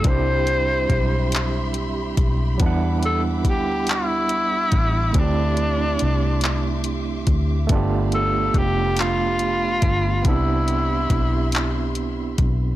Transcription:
Already playing: string section G4 B5
0.02 fingered electric bass C2, tine electric piano G3 C4, string section E5 C6, kick, closed hi-hat
0.06 tine electric piano D4 E4, tenor saxophone C5
0.10 tine electric piano G4
0.47 closed hi-hat
0.90 fingered electric bass B1, kick, closed hi-hat
1.32 clap, closed hi-hat
1.74 closed hi-hat
2.17 fingered electric bass B1, kick, closed hi-hat
2.58 fingered electric bass E2, tine electric piano F#3 B3, string section E5 D6, kick, closed hi-hat
2.62 tine electric piano G3 D4 E4 F#5
3.03 tenor saxophone A4, closed hi-hat
3.45 fingered electric bass D2, kick, closed hi-hat
3.49 tenor saxophone G4
3.87 clap, closed hi-hat
3.91 tenor saxophone E4
4.29 closed hi-hat
4.72 fingered electric bass A1, kick, closed hi-hat
5.12 fingered electric bass D2, tine electric piano A3 C4, string section C6, kick, closed hi-hat
5.17 tine electric piano D4 E4, tenor saxophone D4
5.21 tine electric piano G4
5.57 closed hi-hat
5.99 fingered electric bass C2, closed hi-hat
6.41 clap, closed hi-hat
6.84 closed hi-hat
7.27 fingered electric bass D2, kick, closed hi-hat
7.67 fingered electric bass G1, tine electric piano A3 B3, string section G4 F5 A5 B5, kick, closed hi-hat
7.72 tine electric piano D4 F4 G4
8.12 tenor saxophone A4, closed hi-hat
8.54 fingered electric bass F1, tenor saxophone G4, kick, closed hi-hat
8.97 clap, closed hi-hat
9.01 tenor saxophone F4
9.39 closed hi-hat
9.82 fingered electric bass G1, kick, closed hi-hat
10.22 fingered electric bass C2, tine electric piano B3 C4, string section G4 E5 C6, kick, closed hi-hat
10.27 tine electric piano D4 E4, tenor saxophone E4
10.31 tine electric piano G4
10.68 closed hi-hat
11.10 fingered electric bass B1, kick, closed hi-hat
11.52 clap, closed hi-hat
11.95 closed hi-hat
12.38 fingered electric bass B1, kick, closed hi-hat

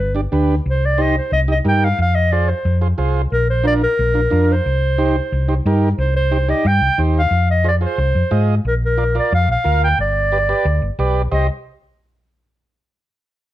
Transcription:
Already playing: clarinet B4
0.00 fingered electric bass G1
0.15 transistor combo organ D4 G4 D5
0.32 fingered electric bass D2, transistor combo organ D4 G4 B4
0.66 fingered electric bass C2
0.70 clarinet C5
0.85 clarinet D5
0.98 transistor combo organ D#4 G4 C5, clarinet D#5
1.18 clarinet C5
1.32 fingered electric bass C2, clarinet D#5
1.48 transistor combo organ D#4 G4 D#5, clarinet D#5
1.65 fingered electric bass G2, transistor combo organ D#4 G4 A#4, clarinet G5
1.84 clarinet F5
1.99 fingered electric bass F2, clarinet F5
2.15 clarinet D#5
2.32 transistor combo organ F4 G#4 C5, clarinet D5
2.49 clarinet C5
2.65 fingered electric bass F2
2.81 transistor combo organ F4 G#4 C5
2.98 fingered electric bass C2, transistor combo organ F4 G#4 C5
3.32 fingered electric bass A#1, clarinet A#4
3.50 clarinet C5
3.63 transistor combo organ D4 F4 A#4, clarinet D5
3.83 clarinet A#4
3.99 fingered electric bass A#1
4.14 transistor combo organ D4 F4 A#4
4.30 fingered electric bass F2, transistor combo organ D4 F4 A#4
4.52 clarinet C5
4.66 fingered electric bass C2
4.98 transistor combo organ D#4 G4 C5
5.32 fingered electric bass C2
5.48 transistor combo organ D#4 G4 C5
5.66 fingered electric bass G2, transistor combo organ D#4 G4 A#4
5.98 fingered electric bass C2, clarinet C5
6.16 clarinet C5
6.31 transistor combo organ D#4 G4 C5
6.48 transistor combo organ D#4 G4 D5, clarinet D#5
6.65 fingered electric bass G2, clarinet G5
6.81 fingered electric bass C2
6.98 fingered electric bass D#2, transistor combo organ D#4 G4 C5
7.19 clarinet F5
7.31 fingered electric bass F2
7.51 clarinet D#5
7.64 transistor combo organ F4 G#4 C5
7.68 clarinet D5
7.81 transistor combo organ F4 G#4 C5
7.86 clarinet C5
7.98 fingered electric bass C2
8.15 fingered electric bass F2
8.31 fingered electric bass G#2, transistor combo organ F4 G#4 D#5
8.65 fingered electric bass A#1, clarinet A#4
8.85 clarinet A#4
8.97 transistor combo organ F4 A#4 D5
9.15 transistor combo organ F4 A#4 D5
9.19 clarinet D5
9.32 fingered electric bass F2, clarinet F5
9.48 fingered electric bass A#1, clarinet F5
9.64 fingered electric bass D2, transistor combo organ F4 A#4 F5
9.84 clarinet G5
9.98 fingered electric bass G1, clarinet D5
10.32 transistor combo organ G4 B4 D5
10.49 transistor combo organ G4 B4 D5
10.65 fingered electric bass D2
10.82 fingered electric bass G1
10.99 fingered electric bass B1, transistor combo organ G4 B4 D5
11.32 fingered electric bass C2, transistor combo organ G4 C5 D#5, clarinet D#5

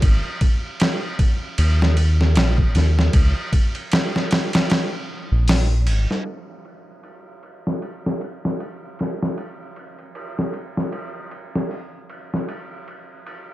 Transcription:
0.02 analog synth bass G#1, kick, ride
0.41 kick, ride
0.80 snare, ride
1.19 kick, ride
1.58 analog synth bass D#2, ride
1.82 snare
1.97 ride
2.21 snare
2.35 analog synth bass A#1, snare, ride
2.58 kick
2.75 analog synth bass D#2, snare, ride
2.99 snare
3.13 analog synth bass C#2, kick, ride
3.53 kick, ride
3.75 ride
3.92 snare, ride
4.16 snare
4.31 snare, ride
4.53 snare, ride
4.70 snare, ride
5.32 analog synth bass A#1
5.48 snare, open hi-hat
5.87 analog synth bass G#1, ride
6.11 snare
6.26 ride
6.65 ride
7.03 ride
7.43 ride
7.67 snare
7.82 ride
8.06 snare
8.21 ride
8.45 snare
8.60 ride
8.99 snare, ride
9.23 snare
9.38 ride
9.76 ride
9.99 ride
10.15 ride
10.39 snare
10.54 ride
10.77 snare
10.92 ride
11.31 ride
11.55 snare
11.71 open hi-hat
12.10 ride
12.34 snare
12.49 ride
12.88 ride
13.26 ride

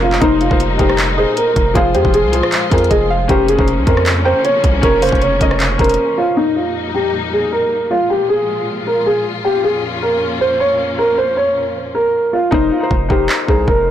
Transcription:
Already playing: 808-style bass F1, string section A#2 F3 A#3 C#4, felt piano C#4 A#4 C5 C#5 D#5
0.02 grand piano F4
0.12 clap
0.20 808-style bass F1, string section G3 D#4, felt piano D#4 A#4 C5, grand piano D#4, kick, closed hi-hat
0.41 grand piano F4, closed hi-hat
0.49 808-style bass F1, felt piano D#4 A#4 C5, kick
0.60 closed hi-hat
0.78 808-style bass F1, felt piano D#4 A#4 C5, grand piano G4, kick, closed hi-hat
0.90 cross-stick
0.98 clap, closed hi-hat
1.16 felt piano D#4 A#4 C5, grand piano G#4, synth pluck D#5
1.37 grand piano A#4, closed hi-hat
1.56 808-style bass F1, kick, closed hi-hat
1.74 808-style bass F1, felt piano F3 F4 G#4 C5, string section F3 G#3 F4, grand piano F4, kick, closed hi-hat
1.95 808-style bass F2, grand piano G4, synth pluck C5, closed hi-hat
2.05 808-style bass F1, kick
2.14 grand piano G#4, closed hi-hat
2.24 808-style bass C2
2.32 felt piano F3 F4 G#4 C5, closed hi-hat
2.43 cross-stick
2.52 clap, closed hi-hat
2.70 808-style bass F2, felt piano F3 F4 G#4 C5, grand piano A#4, kick, closed hi-hat
2.78 closed hi-hat
2.84 closed hi-hat
2.90 808-style bass F1, grand piano G#4, synth pluck D#5, kick, closed hi-hat
3.10 synth pluck F5
3.28 808-style bass F1, string section C#3 A#3 C#4, felt piano C#4 A#4 C5, grand piano G4, kick, closed hi-hat
3.48 grand piano G#4, closed hi-hat
3.57 808-style bass F1, felt piano C#4 A#4 C5, kick
3.68 closed hi-hat
3.78 808-style bass C2
3.85 808-style bass F2, felt piano C#4 A#4 C5, grand piano A#4, kick, closed hi-hat
3.97 cross-stick
4.06 clap, closed hi-hat
4.24 felt piano C#4 A#4 C5, grand piano C5, synth pluck G5
4.45 grand piano C#5, closed hi-hat
4.64 808-style bass C2, kick, closed hi-hat
4.81 808-style bass F1, felt piano C#4 A#4 C#5, grand piano A#4, kick, closed hi-hat
5.02 grand piano C5, synth pluck F5, closed hi-hat, open hi-hat
5.09 808-style bass F1, kick, closed hi-hat
5.15 closed hi-hat
5.22 grand piano C#5, closed hi-hat
5.39 808-style bass F1, felt piano C#4 A#4 D#5, kick, closed hi-hat
5.51 cross-stick
5.60 clap, closed hi-hat
5.78 808-style bass F1, felt piano C#4 A#4 C5, grand piano A#4, kick, closed hi-hat
5.84 closed hi-hat
5.89 closed hi-hat
5.94 closed hi-hat
6.18 grand piano F4
6.37 string section F2 A#2 G3 A#3 D#4, grand piano D#4
6.56 grand piano F4
6.95 grand piano G4
7.33 grand piano G#4
7.52 grand piano A#4
7.91 string section F3 G#3 F4, grand piano F4
8.10 grand piano G4
8.29 grand piano G#4
8.87 grand piano A#4
9.06 grand piano G#4
9.45 string section F2 A#3 C#4, grand piano G4
9.64 grand piano G#4
10.02 grand piano A#4
10.41 grand piano C5
10.60 grand piano C#5
10.98 grand piano A#4
11.18 grand piano C5
11.37 grand piano C#5
11.95 grand piano A#4
12.33 grand piano F4
12.51 808-style bass F1, felt piano D#4 A#4 C5, grand piano D#4, kick
12.72 grand piano F4
12.80 felt piano D#4 A#4 C5
12.91 808-style bass F1, kick
13.09 808-style bass F1, felt piano D#4 A#4 C5, grand piano G4, kick
13.29 clap
13.47 808-style bass C2, felt piano D#4 A#4 C5, grand piano G#4, kick
13.68 808-style bass F1, grand piano A#4, kick

